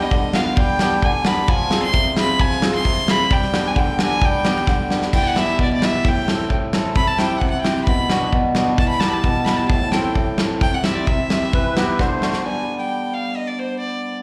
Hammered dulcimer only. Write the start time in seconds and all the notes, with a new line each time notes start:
Already playing: G3
0.12 D3
0.35 B3 D4 F4
0.58 G3
0.81 B3 D4 G4
1.04 D3
1.26 B3 D4 G4
1.49 F3
1.70 C4 F4 G#4
1.93 C3
2.16 C4 F4 G#4
2.40 F3
2.62 C4 F4 G#4
2.85 C3
3.08 C4 F4 G#4
3.31 G3
3.53 B3 D4 G4
3.76 D3
3.98 B3 D4 G4
4.21 G3
4.45 B3 D4 G4
4.68 D3
4.90 B3 D4 G4
5.13 E3
5.35 B3 E4 G4
5.59 B2
5.81 B3 E4 G4
6.05 A2
6.27 C4 E4 A4
6.50 A2
6.74 C4 E4 A4
6.96 C3
7.19 C4 E4 G4
7.43 C3
7.64 C4 E4 G4
7.88 B2
8.10 B3 D4 F#4
8.33 B2
8.56 B3 D4 F#4
8.79 E3
9.02 B3 E4 G4
9.24 B2
9.47 B3 E4 G4
9.71 A2
9.93 C4 E4 A4
10.16 A2
10.39 C4 E4 A4
10.62 C3
10.84 C4 E4 G4
11.06 C3
11.29 C4 E4 G4
11.53 E3
11.77 B3 E4 G4
11.99 D3
12.21 A3 D4 F#4
12.45 G3 B3 D4